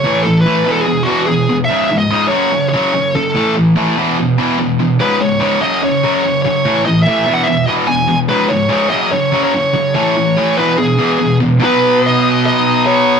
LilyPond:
<<
  \new Staff \with { instrumentName = "Lead electric guitar" } { \time 4/4 \key e \major \tempo 4 = 145 cis''8 a'8 b'8. a'16 gis'8 fis'8 gis'8. r16 | e''8. dis''8. cis''4 cis''4 a'8~ | a'8 r2. r8 | b'8 cis''8 cis''8 dis''8 cis''8. cis''8. cis''8~ |
cis''8 dis''8 e''8. fis''16 e''8 dis''8 gis''8. r16 | b'8 cis''8 cis''8 dis''8 cis''8. cis''4~ cis''16 | cis''4. b'8 gis'4. r8 | b'4 dis''4 dis''4 cis''4 | }
  \new Staff \with { instrumentName = "Distorted electric guitar" } { \clef bass \time 4/4 \key e \major <a, e a>8 <a, e>8 <a, e a>8 <e, b, e>8 <e, b,>8 <e, b, e>8 <e, b,>8 <e, b,>8 | <cis, gis, cis>8 <cis, gis,>8 <cis, gis, cis>8 <fis, cis fis>8 <fis, cis>8 <fis, cis fis>8 <fis, cis>8 <fis, cis>8 | <a, e a>8 <a, e>8 <a, e a>8 <e, b, e>8 <e, b,>8 <e, b, e>8 <e, b,>8 <e, b,>8 | <cis, gis, cis>8 <cis, gis,>8 <cis, gis, cis>8 <fis, cis fis>8 <fis, cis>8 <fis, cis fis>8 <fis, cis>8 <fis, cis>8 |
<a, e a>8 <a, e>8 <a, e a>8 <e, b, e>8 <e, b,>8 <e, b, e>8 <e, b,>8 <e, b,>8 | <cis, gis, cis>8 <cis, gis,>8 <cis, gis, cis>8 <fis, cis fis>8 <fis, cis>8 <fis, cis fis>8 <fis, cis>8 <fis, cis>8 | <a, e a>8 <a, e>8 <a, e a>8 <e, b, e>8 <e, b,>8 <e, b, e>8 <e, b,>8 <e, b,>8 | <b, fis b>1 | }
>>